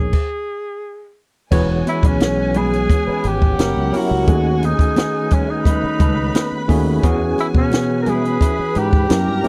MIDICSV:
0, 0, Header, 1, 10, 480
1, 0, Start_track
1, 0, Tempo, 689655
1, 1057, Time_signature, 4, 2, 24, 8
1, 6599, End_track
2, 0, Start_track
2, 0, Title_t, "String section"
2, 0, Program_c, 0, 48
2, 1061, Note_on_c, 0, 56, 82
2, 1062, Note_on_c, 0, 80, 88
2, 2472, Note_off_c, 0, 56, 0
2, 2473, Note_off_c, 0, 80, 0
2, 2498, Note_on_c, 0, 64, 82
2, 2498, Note_on_c, 0, 78, 90
2, 2968, Note_off_c, 0, 64, 0
2, 2968, Note_off_c, 0, 78, 0
2, 2975, Note_on_c, 0, 68, 75
2, 2976, Note_on_c, 0, 80, 82
2, 3916, Note_off_c, 0, 68, 0
2, 3917, Note_off_c, 0, 80, 0
2, 3942, Note_on_c, 0, 71, 81
2, 3942, Note_on_c, 0, 83, 89
2, 4878, Note_off_c, 0, 83, 0
2, 4879, Note_off_c, 0, 71, 0
2, 4896, Note_on_c, 0, 68, 76
2, 4900, Note_on_c, 0, 80, 88
2, 5600, Note_off_c, 0, 68, 0
2, 5601, Note_off_c, 0, 80, 0
2, 5621, Note_on_c, 0, 83, 83
2, 5622, Note_on_c, 0, 71, 78
2, 6321, Note_off_c, 0, 83, 0
2, 6322, Note_off_c, 0, 71, 0
2, 6336, Note_on_c, 0, 70, 81
2, 6336, Note_on_c, 0, 82, 89
2, 6599, Note_off_c, 0, 70, 0
2, 6599, Note_off_c, 0, 82, 0
2, 6599, End_track
3, 0, Start_track
3, 0, Title_t, "Tenor saxophone"
3, 0, Program_c, 1, 66
3, 0, Note_on_c, 1, 68, 80
3, 824, Note_off_c, 1, 68, 0
3, 1311, Note_on_c, 1, 64, 92
3, 1432, Note_on_c, 1, 61, 105
3, 1442, Note_off_c, 1, 64, 0
3, 1789, Note_on_c, 1, 68, 100
3, 1800, Note_off_c, 1, 61, 0
3, 2276, Note_on_c, 1, 67, 105
3, 2286, Note_off_c, 1, 68, 0
3, 2759, Note_on_c, 1, 66, 104
3, 2769, Note_off_c, 1, 67, 0
3, 3237, Note_on_c, 1, 63, 97
3, 3247, Note_off_c, 1, 66, 0
3, 3716, Note_on_c, 1, 61, 81
3, 3727, Note_off_c, 1, 63, 0
3, 3832, Note_on_c, 1, 63, 87
3, 3842, Note_off_c, 1, 61, 0
3, 4663, Note_off_c, 1, 63, 0
3, 5152, Note_on_c, 1, 64, 92
3, 5202, Note_off_c, 1, 64, 0
3, 5272, Note_on_c, 1, 61, 97
3, 5553, Note_off_c, 1, 61, 0
3, 5581, Note_on_c, 1, 70, 77
3, 5632, Note_on_c, 1, 68, 93
3, 5642, Note_off_c, 1, 70, 0
3, 6111, Note_on_c, 1, 67, 100
3, 6121, Note_off_c, 1, 68, 0
3, 6599, Note_off_c, 1, 67, 0
3, 6599, End_track
4, 0, Start_track
4, 0, Title_t, "Clean electric guitar"
4, 0, Program_c, 2, 27
4, 1050, Note_on_c, 2, 61, 75
4, 1057, Note_on_c, 2, 68, 79
4, 1064, Note_on_c, 2, 71, 93
4, 1164, Note_off_c, 2, 71, 0
4, 1175, Note_off_c, 2, 68, 0
4, 1180, Note_off_c, 2, 61, 0
4, 1414, Note_on_c, 2, 71, 58
4, 1423, Note_on_c, 2, 68, 51
4, 1429, Note_on_c, 2, 61, 43
4, 1514, Note_off_c, 2, 71, 0
4, 1519, Note_off_c, 2, 68, 0
4, 1522, Note_off_c, 2, 61, 0
4, 1774, Note_on_c, 2, 61, 76
4, 1781, Note_on_c, 2, 68, 73
4, 1788, Note_on_c, 2, 71, 79
4, 1888, Note_off_c, 2, 71, 0
4, 1898, Note_off_c, 2, 68, 0
4, 1902, Note_off_c, 2, 61, 0
4, 2138, Note_on_c, 2, 71, 73
4, 2146, Note_on_c, 2, 68, 71
4, 2152, Note_on_c, 2, 61, 67
4, 2249, Note_off_c, 2, 61, 0
4, 2253, Note_off_c, 2, 68, 0
4, 2259, Note_off_c, 2, 71, 0
4, 2734, Note_on_c, 2, 58, 52
4, 2742, Note_on_c, 2, 64, 61
4, 2748, Note_on_c, 2, 67, 63
4, 2835, Note_off_c, 2, 58, 0
4, 2839, Note_off_c, 2, 64, 0
4, 2842, Note_off_c, 2, 67, 0
4, 2973, Note_on_c, 2, 57, 72
4, 2981, Note_on_c, 2, 63, 72
4, 2987, Note_on_c, 2, 68, 78
4, 3090, Note_off_c, 2, 68, 0
4, 3099, Note_off_c, 2, 63, 0
4, 3102, Note_off_c, 2, 57, 0
4, 3332, Note_on_c, 2, 68, 54
4, 3340, Note_on_c, 2, 63, 51
4, 3347, Note_on_c, 2, 57, 43
4, 3433, Note_off_c, 2, 68, 0
4, 3437, Note_off_c, 2, 63, 0
4, 3441, Note_off_c, 2, 57, 0
4, 3692, Note_on_c, 2, 57, 67
4, 3699, Note_on_c, 2, 63, 73
4, 3705, Note_on_c, 2, 68, 79
4, 3806, Note_off_c, 2, 68, 0
4, 3814, Note_off_c, 2, 63, 0
4, 3821, Note_off_c, 2, 57, 0
4, 3932, Note_on_c, 2, 57, 73
4, 3939, Note_on_c, 2, 63, 74
4, 3945, Note_on_c, 2, 68, 76
4, 4044, Note_off_c, 2, 68, 0
4, 4053, Note_off_c, 2, 63, 0
4, 4060, Note_off_c, 2, 57, 0
4, 4170, Note_on_c, 2, 57, 60
4, 4179, Note_on_c, 2, 63, 56
4, 4185, Note_on_c, 2, 69, 72
4, 4272, Note_off_c, 2, 57, 0
4, 4276, Note_off_c, 2, 63, 0
4, 4279, Note_off_c, 2, 69, 0
4, 4650, Note_on_c, 2, 57, 50
4, 4657, Note_on_c, 2, 63, 56
4, 4664, Note_on_c, 2, 68, 64
4, 4751, Note_off_c, 2, 57, 0
4, 4755, Note_off_c, 2, 63, 0
4, 4758, Note_off_c, 2, 68, 0
4, 4889, Note_on_c, 2, 61, 81
4, 4898, Note_on_c, 2, 64, 78
4, 4904, Note_on_c, 2, 68, 77
4, 5005, Note_off_c, 2, 68, 0
4, 5014, Note_off_c, 2, 64, 0
4, 5018, Note_off_c, 2, 61, 0
4, 5248, Note_on_c, 2, 68, 57
4, 5256, Note_on_c, 2, 64, 51
4, 5264, Note_on_c, 2, 61, 38
4, 5350, Note_off_c, 2, 68, 0
4, 5354, Note_off_c, 2, 64, 0
4, 5357, Note_off_c, 2, 61, 0
4, 5609, Note_on_c, 2, 61, 63
4, 5617, Note_on_c, 2, 64, 70
4, 5622, Note_on_c, 2, 68, 78
4, 5721, Note_off_c, 2, 68, 0
4, 5729, Note_off_c, 2, 64, 0
4, 5737, Note_off_c, 2, 61, 0
4, 5849, Note_on_c, 2, 61, 75
4, 5855, Note_on_c, 2, 64, 76
4, 5861, Note_on_c, 2, 68, 87
4, 5960, Note_off_c, 2, 68, 0
4, 5972, Note_off_c, 2, 64, 0
4, 5977, Note_off_c, 2, 61, 0
4, 6091, Note_on_c, 2, 61, 63
4, 6097, Note_on_c, 2, 64, 66
4, 6104, Note_on_c, 2, 70, 70
4, 6190, Note_off_c, 2, 61, 0
4, 6193, Note_off_c, 2, 64, 0
4, 6196, Note_off_c, 2, 70, 0
4, 6565, Note_on_c, 2, 58, 65
4, 6572, Note_on_c, 2, 64, 63
4, 6599, Note_off_c, 2, 58, 0
4, 6599, Note_off_c, 2, 64, 0
4, 6599, End_track
5, 0, Start_track
5, 0, Title_t, "Tine electric piano"
5, 0, Program_c, 3, 4
5, 0, Control_c, 3, 64, 127
5, 0, Note_on_c, 3, 47, 65
5, 0, Note_on_c, 3, 59, 57
5, 0, Note_on_c, 3, 63, 62
5, 0, Note_on_c, 3, 70, 59
5, 0, Note_on_c, 3, 73, 69
5, 102, Control_c, 3, 64, 0
5, 104, Note_off_c, 3, 63, 0
5, 104, Note_off_c, 3, 70, 0
5, 105, Note_off_c, 3, 73, 0
5, 107, Note_off_c, 3, 47, 0
5, 109, Note_off_c, 3, 59, 0
5, 1052, Note_on_c, 3, 52, 83
5, 1053, Note_on_c, 3, 59, 77
5, 1057, Note_on_c, 3, 66, 72
5, 1058, Note_on_c, 3, 68, 80
5, 1060, Note_on_c, 3, 73, 99
5, 1167, Control_c, 3, 64, 127
5, 1741, Note_off_c, 3, 52, 0
5, 1742, Note_off_c, 3, 59, 0
5, 1743, Note_off_c, 3, 66, 0
5, 1744, Note_off_c, 3, 68, 0
5, 1745, Note_off_c, 3, 73, 0
5, 2493, Note_on_c, 3, 54, 81
5, 2496, Note_on_c, 3, 61, 70
5, 2498, Note_on_c, 3, 64, 72
5, 2498, Note_on_c, 3, 67, 73
5, 2503, Note_on_c, 3, 70, 87
5, 2508, Control_c, 3, 64, 0
5, 2634, Control_c, 3, 64, 127
5, 2687, Note_off_c, 3, 54, 0
5, 2689, Note_off_c, 3, 61, 0
5, 2690, Note_off_c, 3, 64, 0
5, 2690, Note_off_c, 3, 67, 0
5, 2693, Note_off_c, 3, 70, 0
5, 2730, Note_on_c, 3, 54, 78
5, 2732, Note_on_c, 3, 61, 69
5, 2736, Note_on_c, 3, 64, 70
5, 2736, Note_on_c, 3, 67, 69
5, 2740, Note_on_c, 3, 70, 85
5, 2905, Note_off_c, 3, 54, 0
5, 2906, Note_off_c, 3, 61, 0
5, 2908, Note_off_c, 3, 64, 0
5, 2908, Note_off_c, 3, 67, 0
5, 2910, Note_off_c, 3, 70, 0
5, 2969, Note_on_c, 3, 51, 71
5, 2972, Note_on_c, 3, 57, 66
5, 2975, Note_on_c, 3, 61, 63
5, 2977, Note_on_c, 3, 66, 63
5, 2979, Note_on_c, 3, 68, 82
5, 2988, Control_c, 3, 64, 0
5, 3110, Control_c, 3, 64, 127
5, 3658, Note_off_c, 3, 51, 0
5, 3659, Note_off_c, 3, 57, 0
5, 3661, Note_off_c, 3, 61, 0
5, 3662, Note_off_c, 3, 66, 0
5, 3663, Note_off_c, 3, 68, 0
5, 4649, Note_on_c, 3, 51, 97
5, 4650, Note_on_c, 3, 57, 89
5, 4654, Note_on_c, 3, 61, 89
5, 4657, Note_on_c, 3, 66, 91
5, 4661, Note_on_c, 3, 68, 98
5, 4823, Note_off_c, 3, 51, 0
5, 4824, Note_off_c, 3, 57, 0
5, 4826, Note_off_c, 3, 61, 0
5, 4827, Note_off_c, 3, 66, 0
5, 4829, Note_off_c, 3, 68, 0
5, 4890, Note_on_c, 3, 52, 85
5, 4892, Note_on_c, 3, 59, 77
5, 4895, Note_on_c, 3, 61, 82
5, 4897, Note_on_c, 3, 66, 83
5, 4899, Note_on_c, 3, 68, 93
5, 4904, Control_c, 3, 64, 0
5, 5042, Control_c, 3, 64, 127
5, 5576, Note_off_c, 3, 52, 0
5, 5577, Note_off_c, 3, 59, 0
5, 5579, Note_off_c, 3, 61, 0
5, 5580, Note_off_c, 3, 66, 0
5, 5581, Note_off_c, 3, 68, 0
5, 6326, Note_on_c, 3, 54, 76
5, 6327, Note_on_c, 3, 61, 74
5, 6330, Note_on_c, 3, 64, 76
5, 6332, Note_on_c, 3, 67, 74
5, 6335, Note_on_c, 3, 70, 81
5, 6342, Control_c, 3, 64, 0
5, 6476, Control_c, 3, 64, 127
5, 6521, Note_off_c, 3, 54, 0
5, 6521, Note_off_c, 3, 61, 0
5, 6523, Note_off_c, 3, 64, 0
5, 6524, Note_off_c, 3, 67, 0
5, 6525, Note_off_c, 3, 70, 0
5, 6567, Note_on_c, 3, 54, 75
5, 6570, Note_on_c, 3, 61, 71
5, 6572, Note_on_c, 3, 64, 74
5, 6574, Note_on_c, 3, 67, 70
5, 6577, Note_on_c, 3, 70, 89
5, 6599, Note_off_c, 3, 54, 0
5, 6599, Note_off_c, 3, 61, 0
5, 6599, Note_off_c, 3, 64, 0
5, 6599, Note_off_c, 3, 67, 0
5, 6599, Note_off_c, 3, 70, 0
5, 6599, End_track
6, 0, Start_track
6, 0, Title_t, "Tonewheel organ"
6, 0, Program_c, 4, 16
6, 1061, Note_on_c, 4, 59, 64
6, 1062, Note_on_c, 4, 56, 77
6, 1062, Note_on_c, 4, 78, 60
6, 1063, Note_on_c, 4, 52, 69
6, 1063, Note_on_c, 4, 61, 60
6, 2486, Note_off_c, 4, 56, 0
6, 2486, Note_off_c, 4, 59, 0
6, 2486, Note_off_c, 4, 78, 0
6, 2487, Note_off_c, 4, 52, 0
6, 2498, Note_on_c, 4, 70, 75
6, 2499, Note_on_c, 4, 54, 66
6, 2499, Note_on_c, 4, 64, 56
6, 2500, Note_on_c, 4, 55, 55
6, 2962, Note_off_c, 4, 61, 0
6, 2973, Note_off_c, 4, 54, 0
6, 2973, Note_off_c, 4, 70, 0
6, 2974, Note_off_c, 4, 55, 0
6, 2974, Note_off_c, 4, 64, 0
6, 2981, Note_on_c, 4, 61, 62
6, 2982, Note_on_c, 4, 51, 70
6, 2982, Note_on_c, 4, 57, 66
6, 2982, Note_on_c, 4, 71, 78
6, 2982, Note_on_c, 4, 78, 67
6, 4878, Note_off_c, 4, 51, 0
6, 4878, Note_off_c, 4, 57, 0
6, 4878, Note_off_c, 4, 61, 0
6, 4896, Note_on_c, 4, 59, 61
6, 4897, Note_on_c, 4, 61, 61
6, 4899, Note_on_c, 4, 52, 72
6, 6306, Note_off_c, 4, 71, 0
6, 6306, Note_off_c, 4, 78, 0
6, 6318, Note_off_c, 4, 59, 0
6, 6319, Note_off_c, 4, 52, 0
6, 6333, Note_on_c, 4, 54, 62
6, 6334, Note_on_c, 4, 70, 76
6, 6337, Note_on_c, 4, 55, 62
6, 6337, Note_on_c, 4, 64, 62
6, 6599, Note_off_c, 4, 54, 0
6, 6599, Note_off_c, 4, 55, 0
6, 6599, Note_off_c, 4, 61, 0
6, 6599, Note_off_c, 4, 64, 0
6, 6599, Note_off_c, 4, 70, 0
6, 6599, End_track
7, 0, Start_track
7, 0, Title_t, "Fingered electric bass"
7, 0, Program_c, 5, 33
7, 0, Note_on_c, 5, 34, 77
7, 77, Note_off_c, 5, 34, 0
7, 1059, Note_on_c, 5, 28, 102
7, 1261, Note_off_c, 5, 28, 0
7, 1414, Note_on_c, 5, 35, 89
7, 1988, Note_off_c, 5, 35, 0
7, 2261, Note_on_c, 5, 32, 96
7, 2463, Note_off_c, 5, 32, 0
7, 2499, Note_on_c, 5, 30, 94
7, 2600, Note_off_c, 5, 30, 0
7, 2617, Note_on_c, 5, 37, 90
7, 2719, Note_off_c, 5, 37, 0
7, 2860, Note_on_c, 5, 37, 96
7, 2961, Note_off_c, 5, 37, 0
7, 2980, Note_on_c, 5, 39, 108
7, 3284, Note_off_c, 5, 39, 0
7, 4179, Note_on_c, 5, 37, 95
7, 4381, Note_off_c, 5, 37, 0
7, 4658, Note_on_c, 5, 39, 93
7, 4860, Note_off_c, 5, 39, 0
7, 4898, Note_on_c, 5, 40, 119
7, 5100, Note_off_c, 5, 40, 0
7, 5254, Note_on_c, 5, 47, 92
7, 5825, Note_off_c, 5, 47, 0
7, 6097, Note_on_c, 5, 44, 91
7, 6298, Note_off_c, 5, 44, 0
7, 6336, Note_on_c, 5, 42, 96
7, 6436, Note_off_c, 5, 42, 0
7, 6457, Note_on_c, 5, 43, 70
7, 6556, Note_off_c, 5, 43, 0
7, 6599, End_track
8, 0, Start_track
8, 0, Title_t, "Muted clean electric guitar strokes"
8, 1173, Note_on_c, 9, 29, 46
8, 1242, Note_off_c, 9, 29, 0
8, 1295, Note_on_c, 9, 29, 33
8, 1364, Note_off_c, 9, 29, 0
8, 1654, Note_on_c, 9, 29, 41
8, 1724, Note_off_c, 9, 29, 0
8, 1897, Note_on_c, 9, 29, 40
8, 1966, Note_off_c, 9, 29, 0
8, 2018, Note_on_c, 9, 29, 34
8, 2088, Note_off_c, 9, 29, 0
8, 2257, Note_on_c, 9, 29, 37
8, 2327, Note_off_c, 9, 29, 0
8, 2375, Note_on_c, 9, 29, 44
8, 2444, Note_off_c, 9, 29, 0
8, 2857, Note_on_c, 9, 29, 35
8, 2927, Note_off_c, 9, 29, 0
8, 3098, Note_on_c, 9, 29, 41
8, 3168, Note_off_c, 9, 29, 0
8, 3213, Note_on_c, 9, 29, 47
8, 3283, Note_off_c, 9, 29, 0
8, 3575, Note_on_c, 9, 29, 46
8, 3645, Note_off_c, 9, 29, 0
8, 3814, Note_on_c, 9, 29, 44
8, 3884, Note_off_c, 9, 29, 0
8, 4053, Note_on_c, 9, 29, 43
8, 4122, Note_off_c, 9, 29, 0
8, 4411, Note_on_c, 9, 29, 34
8, 4480, Note_off_c, 9, 29, 0
8, 4773, Note_on_c, 9, 29, 44
8, 4843, Note_off_c, 9, 29, 0
8, 5013, Note_on_c, 9, 29, 37
8, 5083, Note_off_c, 9, 29, 0
8, 5131, Note_on_c, 9, 29, 42
8, 5201, Note_off_c, 9, 29, 0
8, 5492, Note_on_c, 9, 29, 38
8, 5561, Note_off_c, 9, 29, 0
8, 5729, Note_on_c, 9, 29, 37
8, 5799, Note_off_c, 9, 29, 0
8, 5968, Note_on_c, 9, 29, 47
8, 6038, Note_off_c, 9, 29, 0
8, 6599, End_track
9, 0, Start_track
9, 0, Title_t, "Muted fingered electric bass strokes"
9, 2141, Note_on_c, 9, 29, 50
9, 2211, Note_off_c, 9, 29, 0
9, 4061, Note_on_c, 9, 29, 49
9, 4131, Note_off_c, 9, 29, 0
9, 5980, Note_on_c, 9, 29, 47
9, 6049, Note_off_c, 9, 29, 0
9, 6599, End_track
10, 0, Start_track
10, 0, Title_t, "Drums"
10, 89, Note_on_c, 9, 49, 69
10, 92, Note_on_c, 9, 36, 85
10, 159, Note_off_c, 9, 49, 0
10, 161, Note_off_c, 9, 36, 0
10, 1056, Note_on_c, 9, 36, 103
10, 1056, Note_on_c, 9, 49, 89
10, 1064, Note_on_c, 9, 62, 35
10, 1126, Note_off_c, 9, 36, 0
10, 1126, Note_off_c, 9, 49, 0
10, 1133, Note_off_c, 9, 62, 0
10, 1301, Note_on_c, 9, 42, 77
10, 1302, Note_on_c, 9, 62, 51
10, 1370, Note_off_c, 9, 42, 0
10, 1371, Note_off_c, 9, 62, 0
10, 1413, Note_on_c, 9, 36, 93
10, 1422, Note_on_c, 9, 42, 50
10, 1482, Note_off_c, 9, 36, 0
10, 1491, Note_off_c, 9, 42, 0
10, 1534, Note_on_c, 9, 63, 74
10, 1535, Note_on_c, 9, 42, 76
10, 1544, Note_on_c, 9, 38, 122
10, 1604, Note_off_c, 9, 42, 0
10, 1604, Note_off_c, 9, 63, 0
10, 1614, Note_off_c, 9, 38, 0
10, 1769, Note_on_c, 9, 42, 67
10, 1780, Note_on_c, 9, 64, 68
10, 1838, Note_off_c, 9, 42, 0
10, 1849, Note_off_c, 9, 64, 0
10, 1903, Note_on_c, 9, 42, 50
10, 1973, Note_off_c, 9, 42, 0
10, 2015, Note_on_c, 9, 36, 89
10, 2019, Note_on_c, 9, 62, 50
10, 2020, Note_on_c, 9, 42, 83
10, 2085, Note_off_c, 9, 36, 0
10, 2089, Note_off_c, 9, 62, 0
10, 2090, Note_off_c, 9, 42, 0
10, 2253, Note_on_c, 9, 42, 73
10, 2322, Note_off_c, 9, 42, 0
10, 2379, Note_on_c, 9, 36, 86
10, 2449, Note_off_c, 9, 36, 0
10, 2498, Note_on_c, 9, 42, 98
10, 2503, Note_on_c, 9, 63, 65
10, 2507, Note_on_c, 9, 38, 118
10, 2568, Note_off_c, 9, 42, 0
10, 2573, Note_off_c, 9, 63, 0
10, 2577, Note_off_c, 9, 38, 0
10, 2622, Note_on_c, 9, 63, 49
10, 2692, Note_off_c, 9, 63, 0
10, 2738, Note_on_c, 9, 63, 66
10, 2739, Note_on_c, 9, 46, 65
10, 2807, Note_off_c, 9, 63, 0
10, 2809, Note_off_c, 9, 46, 0
10, 2975, Note_on_c, 9, 42, 87
10, 2977, Note_on_c, 9, 36, 98
10, 3044, Note_off_c, 9, 42, 0
10, 3046, Note_off_c, 9, 36, 0
10, 3220, Note_on_c, 9, 42, 74
10, 3223, Note_on_c, 9, 62, 47
10, 3290, Note_off_c, 9, 42, 0
10, 3293, Note_off_c, 9, 62, 0
10, 3334, Note_on_c, 9, 36, 88
10, 3344, Note_on_c, 9, 42, 50
10, 3404, Note_off_c, 9, 36, 0
10, 3413, Note_off_c, 9, 42, 0
10, 3455, Note_on_c, 9, 63, 79
10, 3458, Note_on_c, 9, 42, 82
10, 3468, Note_on_c, 9, 38, 108
10, 3525, Note_off_c, 9, 63, 0
10, 3528, Note_off_c, 9, 42, 0
10, 3537, Note_off_c, 9, 38, 0
10, 3693, Note_on_c, 9, 42, 73
10, 3699, Note_on_c, 9, 36, 91
10, 3700, Note_on_c, 9, 64, 62
10, 3762, Note_off_c, 9, 42, 0
10, 3769, Note_off_c, 9, 36, 0
10, 3770, Note_off_c, 9, 64, 0
10, 3935, Note_on_c, 9, 36, 82
10, 3937, Note_on_c, 9, 62, 53
10, 3937, Note_on_c, 9, 64, 66
10, 3941, Note_on_c, 9, 42, 89
10, 4005, Note_off_c, 9, 36, 0
10, 4007, Note_off_c, 9, 62, 0
10, 4007, Note_off_c, 9, 64, 0
10, 4011, Note_off_c, 9, 42, 0
10, 4173, Note_on_c, 9, 42, 79
10, 4176, Note_on_c, 9, 36, 96
10, 4177, Note_on_c, 9, 64, 70
10, 4242, Note_off_c, 9, 42, 0
10, 4246, Note_off_c, 9, 36, 0
10, 4247, Note_off_c, 9, 64, 0
10, 4418, Note_on_c, 9, 42, 102
10, 4419, Note_on_c, 9, 63, 68
10, 4427, Note_on_c, 9, 38, 112
10, 4488, Note_off_c, 9, 42, 0
10, 4489, Note_off_c, 9, 63, 0
10, 4497, Note_off_c, 9, 38, 0
10, 4538, Note_on_c, 9, 63, 46
10, 4607, Note_off_c, 9, 63, 0
10, 4655, Note_on_c, 9, 63, 74
10, 4656, Note_on_c, 9, 36, 93
10, 4660, Note_on_c, 9, 46, 65
10, 4724, Note_off_c, 9, 63, 0
10, 4726, Note_off_c, 9, 36, 0
10, 4730, Note_off_c, 9, 46, 0
10, 4896, Note_on_c, 9, 36, 98
10, 4896, Note_on_c, 9, 42, 83
10, 4900, Note_on_c, 9, 62, 38
10, 4965, Note_off_c, 9, 36, 0
10, 4966, Note_off_c, 9, 42, 0
10, 4970, Note_off_c, 9, 62, 0
10, 5137, Note_on_c, 9, 62, 49
10, 5142, Note_on_c, 9, 42, 75
10, 5206, Note_off_c, 9, 62, 0
10, 5211, Note_off_c, 9, 42, 0
10, 5251, Note_on_c, 9, 36, 90
10, 5321, Note_off_c, 9, 36, 0
10, 5370, Note_on_c, 9, 63, 76
10, 5377, Note_on_c, 9, 42, 79
10, 5386, Note_on_c, 9, 38, 116
10, 5440, Note_off_c, 9, 63, 0
10, 5446, Note_off_c, 9, 42, 0
10, 5456, Note_off_c, 9, 38, 0
10, 5611, Note_on_c, 9, 42, 72
10, 5615, Note_on_c, 9, 64, 67
10, 5680, Note_off_c, 9, 42, 0
10, 5684, Note_off_c, 9, 64, 0
10, 5743, Note_on_c, 9, 42, 45
10, 5813, Note_off_c, 9, 42, 0
10, 5852, Note_on_c, 9, 36, 78
10, 5855, Note_on_c, 9, 62, 52
10, 5859, Note_on_c, 9, 42, 88
10, 5921, Note_off_c, 9, 36, 0
10, 5924, Note_off_c, 9, 62, 0
10, 5929, Note_off_c, 9, 42, 0
10, 6090, Note_on_c, 9, 42, 77
10, 6159, Note_off_c, 9, 42, 0
10, 6214, Note_on_c, 9, 36, 94
10, 6283, Note_off_c, 9, 36, 0
10, 6332, Note_on_c, 9, 42, 101
10, 6337, Note_on_c, 9, 63, 67
10, 6341, Note_on_c, 9, 38, 115
10, 6402, Note_off_c, 9, 42, 0
10, 6407, Note_off_c, 9, 63, 0
10, 6411, Note_off_c, 9, 38, 0
10, 6456, Note_on_c, 9, 63, 46
10, 6526, Note_off_c, 9, 63, 0
10, 6570, Note_on_c, 9, 46, 64
10, 6571, Note_on_c, 9, 63, 73
10, 6599, Note_off_c, 9, 46, 0
10, 6599, Note_off_c, 9, 63, 0
10, 6599, End_track
0, 0, End_of_file